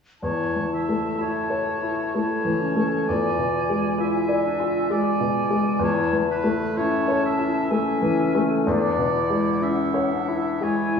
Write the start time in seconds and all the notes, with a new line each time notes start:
0.21 E2 E4 C#5 A5
0.56 E3
0.74 E5
0.89 A3
1.18 E4 F#4 C#5
1.50 C#5
1.82 E4
2.15 A3 E4 C#5 A5
2.45 E3
2.62 C#4
2.76 A3
3.07 E2 F4 D5 G#5
3.38 B2
3.70 G#3
3.98 E4 F4 E5
4.29 D5
4.45 D4
4.60 F4
4.89 G#3 F4 D5 G#5
5.20 B2
5.50 G#3
5.79 E2 E4 A5
5.84 C#5
6.13 E3
6.31 B4
6.44 A3
6.77 C#4 E4 C#5 A5
7.08 C#5
7.26 E5
7.39 E4
7.71 A3 C#4 E5 G#5
8.02 E3
8.35 A3
8.65 E2 D4 D5 F#5
8.98 B2
9.13 E4
9.30 G#3
9.61 C#4 E4 E5
9.94 C#5
10.13 D4
10.28 E4
10.60 G#3 E4 C#5 G#5